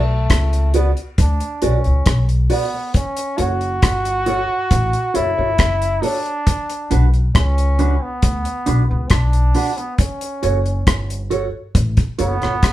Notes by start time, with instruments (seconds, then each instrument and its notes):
Already playing: upright bass B1, trombone A3
0.30 upright bass C#2, kick, cross-stick, closed hi-hat
0.53 closed hi-hat
0.74 trombone B3, clean electric guitar F#4 B4 D5, closed hi-hat
0.97 closed hi-hat
1.18 upright bass D2, trombone D4, kick, closed hi-hat
1.40 closed hi-hat
1.62 upright bass B1, trombone C#4, clean electric guitar F#4 B4 D5, closed hi-hat
1.84 upright bass C#2, closed hi-hat
2.06 upright bass B1, kick, cross-stick, closed hi-hat
2.29 closed hi-hat
2.50 trombone B3, clean electric guitar F#4 B4 D5, open hi-hat
2.73 muted clean electric guitar stroke
2.94 trombone C#4, kick, closed hi-hat
3.17 closed hi-hat
3.38 upright bass F#1, clean electric guitar F#4 A4 C#5, trombone F#4, closed hi-hat
3.61 closed hi-hat
3.82 upright bass G1, kick, cross-stick, closed hi-hat
4.05 closed hi-hat
4.26 clean electric guitar F#4 A4 C#5, closed hi-hat
4.71 upright bass A1, kick, closed hi-hat
4.93 closed hi-hat
5.14 upright bass F#1, trombone E4, clean electric guitar F#4 A4 C#5, closed hi-hat
5.37 upright bass G1, clean electric guitar F#4 A4 C#5
5.58 upright bass F#1, kick, cross-stick, closed hi-hat
5.82 closed hi-hat
6.02 trombone D4, clean electric guitar F#4 A4 C#5, open hi-hat
6.26 closed hi-hat
6.47 kick, closed hi-hat
6.70 closed hi-hat
6.90 upright bass B1, clean electric guitar D4 F#4 B4, closed hi-hat
7.14 closed hi-hat
7.35 upright bass C#2, trombone C#4, kick, cross-stick, closed hi-hat
7.58 closed hi-hat
7.79 clean electric guitar D4 F#4 B4, closed hi-hat
8.03 trombone B3
8.22 upright bass D2, kick, closed hi-hat
8.45 closed hi-hat
8.66 upright bass B1, clean electric guitar D4 F#4 B4, closed hi-hat
8.90 upright bass C#2, trombone B3
9.10 upright bass B1, trombone D4, kick, cross-stick, closed hi-hat
9.33 closed hi-hat
9.55 clean electric guitar D4 F#4 B4, open hi-hat
9.78 trombone B3, muted clean electric guitar stroke, closed hi-hat
9.98 trombone C#4, kick, closed hi-hat
10.21 closed hi-hat
10.43 upright bass F#1, clean electric guitar F#4 A4 C#5, closed hi-hat
10.66 closed hi-hat
10.87 upright bass G1, kick, cross-stick, closed hi-hat
11.10 closed hi-hat
11.30 clean electric guitar F#4 A4 C#5, closed hi-hat
11.75 upright bass A1, kick, closed hi-hat
11.97 kick, closed hi-hat
12.18 upright bass F#1, trombone B3, clean electric guitar F#4 A4 C#5, closed hi-hat
12.41 upright bass G1, clean electric guitar F#4 A4 C#5, cross-stick, closed hi-hat
12.63 upright bass F#1, kick, cross-stick, closed hi-hat